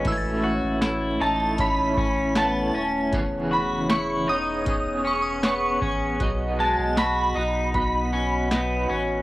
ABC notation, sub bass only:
X:1
M:4/4
L:1/16
Q:1/4=78
K:Bmix
V:1 name="Sub bass" clef=bass
A,,,3 A,,,3 A,,,8 D,,,2 | E,,,3 E,,,3 E,,,8 A,,,2 | B,,,3 B,,,3 B,,,8 A,,,2 |]